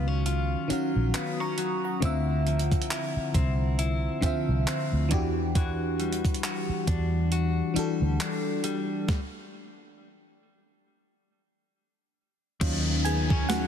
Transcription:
Already playing: fingered electric bass C#2, fm electric piano D#3 C#4 F#4 F5, clean electric guitar D#3 F#3 F4
0.08 clean electric guitar C#4
0.26 clean electric guitar F4, closed hi-hat
0.68 fm electric piano D#3 C#4 F#4, clean electric guitar F#3, muted fingered electric bass stroke, closed hi-hat
0.73 fm electric piano F5
0.96 fingered electric bass A#1
1.14 clean electric guitar B3, fm electric piano D#6, clap, closed hi-hat
1.40 clean electric guitar C#4, fm electric piano A#5 C#6
1.58 clean electric guitar F#3, closed hi-hat
1.84 fm electric piano F#5 A#5
2.00 fingered electric bass D2, fm electric piano D3 C4 F4, clean electric guitar D3 E4, kick, closed hi-hat
2.05 fm electric piano E5
2.47 clean electric guitar F3, closed hi-hat
2.59 closed hi-hat
2.72 kick, closed hi-hat
2.82 closed hi-hat
2.91 clean electric guitar E4, clap, closed hi-hat
3.16 muted fingered electric bass stroke
3.34 fingered electric bass C2, clean electric guitar C4, kick, closed hi-hat
3.79 clean electric guitar E4, closed hi-hat
4.21 fm electric piano D3 C4 F4, clean electric guitar F3, muted fingered electric bass stroke, kick, closed hi-hat
4.26 fm electric piano E5
4.49 fingered electric bass C2
4.67 clean electric guitar C4, clap, closed hi-hat
4.93 fingered electric bass D2
5.09 fingered electric bass E2, fm electric piano E3 D4 F#4, clean electric guitar E3, kick, closed hi-hat
5.14 fm electric piano G4
5.55 clean electric guitar E3 F#4, kick, closed hi-hat
6.00 clean electric guitar G3, closed hi-hat
6.13 closed hi-hat
6.25 kick, closed hi-hat
6.34 closed hi-hat
6.43 clean electric guitar F#4, clap, closed hi-hat
6.69 muted fingered electric bass stroke
6.87 fingered electric bass E2, clean electric guitar D4, kick, closed hi-hat
7.32 clean electric guitar F#4, closed hi-hat
7.74 fm electric piano E3 D4 F#4, clean electric guitar G3, muted fingered electric bass stroke, closed hi-hat
7.79 fm electric piano A4
8.02 fingered electric bass D2
8.20 clean electric guitar D4, clap, closed hi-hat
8.64 clean electric guitar G3, closed hi-hat
9.09 kick, snare
12.61 fingered electric bass D#2, clean electric guitar D#3, analog synth pad D#3 F#3 C#4 D#4, fm electric piano F#3 C#4 F4, kick, closed hi-hat, crash, downlifter
13.05 clean electric guitar B3, fm electric piano G#4 G#5, closed hi-hat
13.30 clean electric guitar C#4, kick
13.49 clean electric guitar F#3, fm electric piano F#4 F#5, snare, closed hi-hat

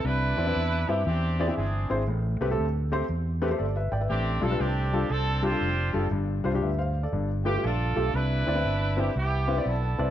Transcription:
0.04 fingered electric bass C2, grand piano C3, horn section D4 E4 B4
0.37 fingered electric bass E2, grand piano C4 E4 B4 D5
0.47 grand piano C4 E4 B4 D5
0.56 fingered electric bass E2
0.89 fingered electric bass G2, grand piano C4 E4 B4 E5, horn section G4
1.06 fingered electric bass E2, grand piano E3, horn section C4 D4 G4
1.40 grand piano C4 E4 G#4 D5
1.48 grand piano C4 E4 G#4 E5
1.56 fingered electric bass G1, horn section C4 D4 G#4
1.90 fingered electric bass G#1, grand piano C4 E4 G#4 C5
2.07 fingered electric bass A1, grand piano A2
2.41 fingered electric bass C2, grand piano A3 C4 G4 B4
2.50 grand piano A3 C4 G4 A4
2.58 fingered electric bass D2
2.92 grand piano A3 C4 G4 C5
3.09 fingered electric bass E2
3.42 grand piano A3 C4 G4 B4
3.50 grand piano A3 C4 G4 C5
3.59 fingered electric bass G1, grand piano A4 D5
3.76 grand piano B4 E5
3.92 fingered electric bass G#1, grand piano D5 G5
4.01 grand piano B4 E5
4.09 fingered electric bass A1, grand piano A2, horn section C4 D4 G4
4.41 fingered electric bass B1, grand piano G3 D4 F4 A4, horn section A4
4.51 grand piano G3 D4 F4 B4
4.60 fingered electric bass C2, horn section C4 D4 G4
4.93 grand piano G3 D4 F4 A4
5.10 fingered electric bass C2, horn section C4 D4 A4
5.42 grand piano G3 D4 F4 G4, horn section F4 G4 C5
5.51 grand piano G3 D4 F4 A4
5.61 fingered electric bass F1
5.93 fingered electric bass F#1, grand piano G3 D4 F4 A4
6.11 fingered electric bass G1, grand piano G2
6.44 fingered electric bass C2, grand piano G3 D4 F4 C5
6.53 grand piano G3 D4 F4 G4
6.62 fingered electric bass D2, grand piano B4 E5
6.79 grand piano C5 F5
7.03 grand piano A4 D5
7.13 fingered electric bass G1, grand piano G2
7.45 grand piano A3 F4 G4 B4, horn section G4
7.54 grand piano A3 F4 G4 B4
7.64 fingered electric bass A#1, horn section D4 F4 A4
7.96 fingered electric bass B1, grand piano A3 F4 G4 A4
8.14 fingered electric bass C2, grand piano C3, horn section D4 E4 B4
8.47 fingered electric bass D2, grand piano C4 E4 B4 D5
8.55 grand piano C4 E4 B4 E5
8.65 fingered electric bass G1
8.97 grand piano C4 E4 B4 E5, horn section G4
9.16 fingered electric bass C2, horn section B3 E4 G4
9.48 grand piano C4 E4 B4 E5
9.57 grand piano C4 E4 B4 D5
9.66 fingered electric bass B1, horn section D4 E4
9.70 horn section A4
9.99 fingered electric bass C2, grand piano C4 E4 B4 D5

